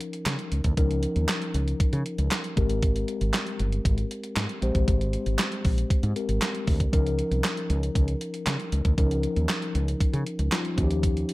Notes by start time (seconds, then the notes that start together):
Already playing: F3 C#4 D#4 A#4
0.01 closed hi-hat
0.13 closed hi-hat
0.26 C#3, snare, clap, closed hi-hat
0.39 closed hi-hat
0.52 C#2, closed hi-hat
0.64 D2, kick, closed hi-hat
0.77 C#2 F3 C#4 D#4 A#4, kick, closed hi-hat
0.91 closed hi-hat
1.03 closed hi-hat
1.16 D#2, closed hi-hat
1.29 snare, clap, closed hi-hat
1.42 closed hi-hat
1.54 C#2, closed hi-hat
1.68 closed hi-hat
1.80 muted fretless electric bass stroke, kick, closed hi-hat
1.93 C#3, closed hi-hat
2.06 closed hi-hat
2.18 C#2, closed hi-hat
2.31 snare, clap, closed hi-hat
2.44 closed hi-hat
2.56 G#1 G#3 C4 G4 A#4, kick, closed hi-hat
2.70 closed hi-hat
2.82 kick, closed hi-hat
2.96 closed hi-hat
3.08 closed hi-hat
3.21 G#1, closed hi-hat
3.34 snare, clap, closed hi-hat
3.47 closed hi-hat
3.59 G1, closed hi-hat
3.72 closed hi-hat
3.85 G#1, kick, closed hi-hat
3.98 closed hi-hat
4.11 closed hi-hat
4.24 closed hi-hat
4.36 G#2, snare, clap, closed hi-hat
4.49 closed hi-hat
4.62 A#1 G#3 C4 G4 C5, closed hi-hat
4.75 A1, kick, closed hi-hat
4.88 G#1, kick, closed hi-hat
5.01 closed hi-hat
5.13 closed hi-hat
5.26 G#1, closed hi-hat
5.39 snare, clap, closed hi-hat
5.52 closed hi-hat
5.65 A#1, kick, open hi-hat
5.78 closed hi-hat
5.90 muted fretless electric bass stroke, kick, closed hi-hat
6.03 G#2, closed hi-hat
6.16 G#3 C4 G4 A#4, closed hi-hat
6.29 G#1, closed hi-hat
6.42 snare, clap, closed hi-hat
6.55 closed hi-hat
6.67 D2, kick, open hi-hat
6.80 kick, closed hi-hat
6.92 C#2 F3 C#4 D#4 A#4, kick, closed hi-hat
7.06 closed hi-hat
7.19 closed hi-hat
7.31 C2, closed hi-hat
7.44 snare, clap, closed hi-hat
7.57 closed hi-hat
7.70 C#2, closed hi-hat
7.83 closed hi-hat
7.95 C#2, kick, closed hi-hat
8.08 closed hi-hat
8.21 closed hi-hat
8.34 closed hi-hat
8.47 C#3, snare, clap, closed hi-hat
8.60 closed hi-hat
8.72 C#2, closed hi-hat
8.85 D2, kick, closed hi-hat
8.97 C#2 F3 C#4 D#4 A#4, kick, closed hi-hat
9.11 closed hi-hat
9.23 closed hi-hat
9.36 D#2, closed hi-hat
9.49 snare, clap, closed hi-hat
9.62 closed hi-hat
9.75 C#2, closed hi-hat
9.88 closed hi-hat
10.01 muted fretless electric bass stroke, kick, closed hi-hat
10.13 C#3, closed hi-hat
10.27 closed hi-hat
10.39 C#2, closed hi-hat
10.51 F3 C#4 D#4 F4, snare, clap, closed hi-hat
10.65 closed hi-hat
10.76 D#2 F3 C#4 D#4 F#4, kick, closed hi-hat
10.84 G4
10.91 closed hi-hat
11.03 kick, closed hi-hat
11.17 closed hi-hat
11.29 closed hi-hat